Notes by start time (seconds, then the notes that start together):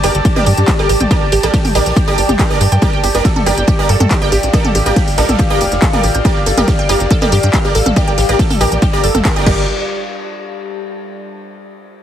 Already playing: G4 D5 A5
0.04 G1 G4 A#4 D5, snare, open hi-hat, ride
0.15 G1 A4, closed hi-hat
0.25 G4, kick, closed hi-hat, ride
0.36 G4 A#4 D5 G5, mid tom
0.46 G2 G4, open hi-hat, ride
0.57 G2, closed hi-hat, ride
0.68 G4, kick, snare, clap, closed hi-hat, ride
0.79 G4 A4 A#4 D5, snare
0.89 A1 G4, open hi-hat, ride
1.00 A1 G5, closed hi-hat, mid tom
1.11 G4 A#4 D5, kick, closed hi-hat, ride
1.32 A1 G4, open hi-hat, ride
1.43 A1 G4 A4 A#4 D5, closed hi-hat, ride
1.54 G4, kick, snare, closed hi-hat, ride
1.65 G5, open hi-hat, mid tom
1.75 A#1 G4 A#4 D5, open hi-hat
1.86 A#1, closed hi-hat
1.96 G4, kick, closed hi-hat, ride
2.08 G4 A4 A#4 D5, ride
2.18 G1 G4, open hi-hat, ride
2.28 G1 G4, snare, closed hi-hat, mid tom
2.39 G4 A#4 D5, kick, snare, clap, closed hi-hat, ride
2.50 G4 A#4 D5, snare
2.61 G2 G4, open hi-hat, ride
2.72 G2 G5, closed hi-hat
2.82 G4 A#4 D5, kick, closed hi-hat, ride
2.93 G5
3.04 G1 G4 F5, open hi-hat, ride
3.15 G1 G4 A#4 D5, snare, closed hi-hat
3.25 A4, kick, snare, closed hi-hat, ride
3.36 A4, mid tom
3.46 G1 G4 A#4 D5, snare, open hi-hat, ride
3.57 G1 G5, closed hi-hat
3.67 G4, kick, closed hi-hat, ride
3.79 G4 A#4 D5
3.89 G2 A4, open hi-hat, ride
4.00 G2 A4, closed hi-hat, mid tom, ride
4.11 G4, kick, snare, clap, closed hi-hat, ride
4.22 G4 A#4 D5 G5, snare
4.32 A1 G4, open hi-hat, ride
4.43 A1, closed hi-hat
4.53 G4 A4 A#4 D5, kick, closed hi-hat, ride
4.65 A4, mid tom
4.75 A1 G4, open hi-hat, ride
4.86 A1 G4 A#4 D5 G5, closed hi-hat, ride
4.96 G4, kick, snare, closed hi-hat, ride
5.08 open hi-hat
5.17 A#1 G4 A4 A#4 D5, open hi-hat
5.29 A#1 A4, closed hi-hat, mid tom
5.39 G4, kick, closed hi-hat, ride
5.50 G4 A#4 D5 G5, ride
5.61 F1 G4, open hi-hat, ride
5.72 F1, snare, closed hi-hat
5.82 A4, kick, snare, clap, closed hi-hat, ride
5.93 G4 A4 A#4 D5, snare, mid tom
6.03 A1 G4, open hi-hat, ride
6.15 A1 G5, closed hi-hat
6.25 G4 A#4 D5, kick, closed hi-hat, ride
6.46 G1 A4, open hi-hat, ride
6.57 G1 G4 A4 A#4 D5, snare, closed hi-hat, mid tom
6.68 G4, kick, snare, closed hi-hat, ride
6.79 G5
6.89 G1 G4 A#4 D5, snare, open hi-hat, ride
7.00 G1, closed hi-hat
7.11 A4, kick, closed hi-hat, ride
7.22 G4 A4 A#4 D5, mid tom
7.32 G2 G4, open hi-hat, ride
7.43 G2 G5, closed hi-hat
7.53 G4, kick, clap, closed hi-hat, ride
7.64 G4 A#4 D5, snare
7.75 A1 A4, open hi-hat, ride
7.86 A1 A4, closed hi-hat, mid tom
7.96 G4 A#4 D5, kick, closed hi-hat, ride
8.08 G5
8.18 A1 G4, snare, open hi-hat, ride
8.29 A1 G4 A#4 D5, closed hi-hat
8.38 A4, kick, snare, closed hi-hat, ride
8.50 A4, open hi-hat, mid tom
8.61 A#1 G4 A#4 D5, open hi-hat, ride
8.72 A#1 G5, closed hi-hat
8.82 G4, kick, closed hi-hat, ride
8.93 G4 A#4 D5, ride
9.04 G1 A4, open hi-hat, ride
9.14 G1 A4, snare, closed hi-hat, mid tom
9.25 G4 A#4 D5, kick, snare, clap, closed hi-hat, ride
9.30 snare, ride
9.36 G4 A#4 D5 G5, snare, ride
9.41 snare, ride
9.46 G1 G4 A#4 D5, kick, crash
9.53 D5
9.81 A5